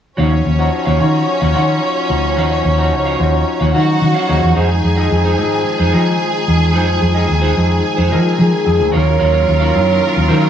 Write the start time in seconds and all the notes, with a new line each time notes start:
0.17 D#2 F3 C#4 D#4 F#4 C#5 F5
0.32 muted clean electric guitar stroke
0.45 D#2, muted clean electric guitar stroke
0.59 F3 C#4 D#4 F#4 C#5 F#5
0.73 muted clean electric guitar stroke
0.85 D#2 F#4 C#5 F5
1.00 D#3 C#4 D#4 F4 F#4, muted clean electric guitar stroke
1.14 muted clean electric guitar stroke
1.28 muted clean electric guitar stroke
1.40 D#2 F#4 C#5 F5
1.54 D#3 C#4 D#4 F4 F#4 C#5 F#5
1.67 muted clean electric guitar stroke
1.82 muted clean electric guitar stroke
1.95 muted clean electric guitar stroke
2.08 D2 F3 C#4 D#4 F#4
2.24 muted clean electric guitar stroke
2.36 D#2 F3 C#4 D#4 F#4 C#5 F5
2.51 muted clean electric guitar stroke
2.64 D#2, muted clean electric guitar stroke
2.78 F3 C#4 D#4 F#4 C#5 F#5
2.92 C#2, muted clean electric guitar stroke
3.05 F#4 C#5 F5
3.19 D#2 C#4 D#4 F4 F#4, muted clean electric guitar stroke
3.33 muted clean electric guitar stroke
3.47 muted clean electric guitar stroke
3.60 D#2 F#4 C#5 F5
3.73 D#3 F#3 C#4 D#4 F#4 C#5 F#5
3.87 muted clean electric guitar stroke
4.01 D#3, muted clean electric guitar stroke
4.14 F#4 C#5 F5
4.28 D#2 F3 C#4 D#4 F#4 G#4 C#5 F5
4.42 E2, muted clean electric guitar stroke
4.55 F2 D#3 F3 G#3 C4 D#4 G#4 C5 G#5
4.69 muted clean electric guitar stroke
4.83 F2, muted clean electric guitar stroke
4.97 F3 C4 D#4 G#4 D#5
5.11 F2, muted clean electric guitar stroke
5.24 D#4 G#4 C5
5.37 G#2 F3 C4 D#4 G#4, muted clean electric guitar stroke
5.51 muted clean electric guitar stroke
5.65 muted clean electric guitar stroke
5.79 F2 D#4 G#4 C5
5.92 F3 C4 D#4 G#4 D#5
6.05 muted clean electric guitar stroke
6.19 muted clean electric guitar stroke
6.32 muted clean electric guitar stroke
6.48 E2 F3 C4 D#4 G#4
6.60 muted clean electric guitar stroke
6.73 F2 F3 C4 D#4 G#4 C5
6.88 muted clean electric guitar stroke
7.02 F2, muted clean electric guitar stroke
7.15 F3 C4 D#4 G#4 D#5
7.27 D#2, muted clean electric guitar stroke
7.42 D#4 G#4 C5
7.57 F2 F3 C4 D#4 G#4
7.70 muted clean electric guitar stroke
7.83 muted clean electric guitar stroke
7.97 F2 D#4 G#4 C5
8.10 F3 C4 D#4 G#4 A#4 D#5
8.23 muted clean electric guitar stroke
8.33 A#4
8.38 F3 G#4, muted clean electric guitar stroke
8.51 muted clean electric guitar stroke
8.65 F2 F3 C4 D#4 G#4
8.79 D2, muted clean electric guitar stroke
8.92 D#2 D#3 F#3 A#3 C#4 F4 F#4 A#4 C#5 F5
9.19 D#2 F#4 C#5 F5
9.33 F#4 C#5 F5
9.47 D#2 C#5, muted clean electric guitar stroke
9.60 D#3 F#3 C#4 F4 F#4 C#5 F5
9.74 F#2 D#3 F#3 C#4 E4, muted clean electric guitar stroke
9.82 F4
9.88 muted clean electric guitar stroke
10.02 A#4, muted clean electric guitar stroke
10.15 D#2, muted clean electric guitar stroke
10.28 D#3 F#4 A#4 C#5 F5
10.42 muted clean electric guitar stroke